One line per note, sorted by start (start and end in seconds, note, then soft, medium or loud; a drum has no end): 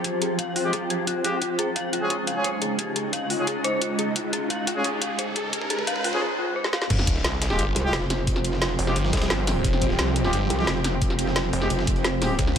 0.00 1.38 F3 medium
0.00 1.38 C4 medium
0.00 1.39 F4 medium
0.00 2.47 F4 medium
0.00 2.28 C5 medium
0.00 2.10 G5 medium
0.04 0.16 G4 medium
0.04 kick loud
0.04 closed hi-hat medium
0.22 0.33 G#4 medium
0.22 closed hi-hat medium
0.39 0.43 F5 loud
0.39 kick loud
0.39 closed hi-hat medium
0.56 0.61 F4 medium
0.56 open hi-hat medium
0.64 0.72 G#3 medium
0.64 0.72 F4 medium
0.64 0.72 G4 loud
0.73 0.78 G#4 medium
0.73 kick loud
0.73 closed hi-hat medium
0.90 0.98 G4 medium
0.90 closed hi-hat medium
1.07 1.15 F4 medium
1.07 kick loud
1.07 closed hi-hat medium
1.24 1.37 G#3 medium
1.24 1.29 F4 loud
1.24 1.37 F4 medium
1.24 1.37 G4 medium
1.24 closed hi-hat medium
1.42 6.18 C#3 medium
1.42 6.18 G#3 medium
1.42 6.22 C#4 medium
1.42 6.18 D#4 medium
1.42 1.53 F4 medium
1.42 kick loud
1.42 closed hi-hat medium
1.42 riser medium
1.53 6.22 G#3 medium
1.59 1.67 G#4 loud
1.59 closed hi-hat medium
1.76 1.81 F5 loud
1.76 kick loud
1.76 closed hi-hat medium
1.93 1.98 F4 medium
1.93 closed hi-hat medium
2.02 2.14 C#4 medium
2.02 2.14 F4 medium
2.02 2.14 G#4 loud
2.10 2.15 G#4 medium
2.10 kick loud
2.10 closed hi-hat medium
2.27 2.35 F5 medium
2.27 closed hi-hat medium
2.36 2.49 C#4 medium
2.36 2.49 F4 medium
2.36 2.49 G#4 loud
2.44 2.49 C5 medium
2.44 kick loud
2.44 closed hi-hat medium
2.55 5.14 D#5 medium
2.62 2.73 G#4 medium
2.62 closed hi-hat medium
2.79 2.90 G4 medium
2.79 kick loud
2.79 closed hi-hat medium
2.96 3.08 G#4 medium
2.96 closed hi-hat medium
3.13 3.18 F5 loud
3.13 kick loud
3.13 closed hi-hat medium
3.30 3.42 F4 medium
3.30 open hi-hat medium
3.39 3.47 C#4 medium
3.39 3.47 F4 medium
3.39 3.47 G#4 loud
3.47 3.52 G#4 medium
3.47 kick loud
3.47 closed hi-hat medium
3.64 3.72 C5 loud
3.64 closed hi-hat medium
3.82 3.93 F4 medium
3.82 kick loud
3.82 closed hi-hat medium
3.99 4.10 G#4 medium
3.99 closed hi-hat medium
4.16 4.28 F4 medium
4.16 kick loud
4.16 closed hi-hat medium
4.33 4.41 G#4 loud
4.33 kick loud
4.33 closed hi-hat medium
4.50 4.55 F5 loud
4.50 kick loud
4.50 closed hi-hat medium
4.67 4.72 F4 loud
4.67 kick loud
4.67 closed hi-hat loud
4.76 4.89 C#4 medium
4.76 4.89 F4 medium
4.76 4.89 G#4 loud
4.84 4.89 G#4 medium
4.84 kick loud
4.84 closed hi-hat medium
5.02 5.09 F5 medium
5.02 kick loud
5.02 closed hi-hat loud
5.19 5.23 C5 medium
5.19 kick loud
5.19 closed hi-hat medium
5.36 5.48 G#4 medium
5.36 kick loud
5.36 closed hi-hat medium
5.53 5.65 G4 medium
5.53 kick loud
5.53 closed hi-hat medium
5.62 kick medium
5.70 5.82 G#4 medium
5.70 kick loud
5.70 closed hi-hat loud
5.79 kick medium
5.87 5.92 F5 loud
5.87 kick loud
5.87 closed hi-hat medium
5.96 kick medium
6.04 6.16 F4 medium
6.04 kick loud
6.04 open hi-hat medium
6.13 6.21 C#4 medium
6.13 6.21 F4 medium
6.13 6.21 G#4 loud
6.13 kick medium
6.22 6.26 G#4 medium
6.39 6.50 F4 medium
6.56 6.64 C5 medium
6.64 snare medium
6.73 6.85 F5 medium
6.73 snare medium
6.82 snare medium
6.90 7.23 F1 loud
6.90 12.35 F3 medium
6.90 12.35 C4 medium
6.90 12.58 F4 medium
6.90 12.35 G4 medium
6.90 kick loud
6.90 closed hi-hat medium
6.90 crash loud
6.90 sub drop medium
6.99 12.58 C5 medium
6.99 snare soft
7.07 kick loud
7.07 closed hi-hat medium
7.07 closed hi-hat loud
7.16 snare soft
7.24 7.57 C2 loud
7.24 snare loud
7.24 closed hi-hat medium
7.42 snare loud
7.42 closed hi-hat medium
7.42 closed hi-hat loud
7.50 7.63 G#3 medium
7.50 7.63 F4 medium
7.50 7.63 G4 loud
7.50 snare soft
7.59 7.75 G1 loud
7.59 closed hi-hat loud
7.59 closed hi-hat medium
7.76 7.92 C2 medium
7.76 closed hi-hat medium
7.76 closed hi-hat loud
7.84 7.97 G#3 loud
7.84 7.97 F4 medium
7.84 7.97 G4 loud
7.93 8.77 F1 loud
7.93 12.58 G5 medium
7.93 snare loud
7.93 closed hi-hat medium
8.10 snare medium
8.10 closed hi-hat loud
8.10 closed hi-hat medium
8.27 kick loud
8.27 closed hi-hat medium
8.36 snare soft
8.44 closed hi-hat loud
8.44 closed hi-hat medium
8.53 snare soft
8.62 snare loud
8.62 closed hi-hat medium
8.79 8.95 F1 loud
8.79 closed hi-hat medium
8.79 open hi-hat medium
8.87 8.95 G#3 medium
8.87 8.95 F4 medium
8.87 8.95 G4 loud
8.87 snare soft
8.96 9.12 G1 loud
8.96 closed hi-hat medium
9.04 snare medium
9.13 9.29 C2 loud
9.13 kick loud
9.13 snare medium
9.13 closed hi-hat loud
9.13 closed hi-hat medium
9.17 snare medium
9.17 closed hi-hat medium
9.22 snare loud
9.22 closed hi-hat medium
9.30 9.63 G1 loud
9.30 snare loud
9.30 closed hi-hat medium
9.47 snare medium
9.47 closed hi-hat loud
9.47 open hi-hat medium
9.64 9.97 F1 loud
9.64 kick loud
9.64 closed hi-hat medium
9.73 snare soft
9.82 kick loud
9.82 closed hi-hat medium
9.90 snare soft
9.99 10.32 C2 medium
9.99 snare loud
9.99 closed hi-hat medium
10.16 closed hi-hat medium
10.24 10.37 G#3 loud
10.24 10.37 F4 medium
10.24 10.37 G4 loud
10.24 snare soft
10.33 10.49 G1 loud
10.33 closed hi-hat medium
10.50 10.66 C2 loud
10.50 closed hi-hat medium
10.59 10.72 G#3 medium
10.59 10.72 F4 medium
10.59 10.72 G4 loud
10.59 snare medium
10.67 11.52 F1 loud
10.67 snare loud
10.67 closed hi-hat medium
10.84 snare soft
10.84 snare medium
10.84 closed hi-hat medium
11.02 kick loud
11.02 closed hi-hat medium
11.10 snare soft
11.19 closed hi-hat medium
11.27 snare soft
11.36 snare loud
11.36 closed hi-hat medium
11.53 11.69 F1 loud
11.53 closed hi-hat medium
11.53 open hi-hat medium
11.62 11.70 G#3 medium
11.62 11.70 F4 medium
11.62 11.70 G4 loud
11.62 snare soft
11.70 11.86 F1 loud
11.70 closed hi-hat medium
11.79 snare medium
11.87 12.37 F1 loud
11.87 kick loud
11.87 closed hi-hat medium
11.96 closed hi-hat soft
12.04 snare loud
12.04 closed hi-hat medium
12.22 12.34 G#3 medium
12.22 12.34 F4 medium
12.22 12.34 G4 medium
12.22 snare medium
12.22 closed hi-hat medium
12.22 open hi-hat medium
12.39 12.58 C#2 loud
12.39 12.58 C#4 medium
12.39 kick loud
12.39 closed hi-hat medium
12.47 snare soft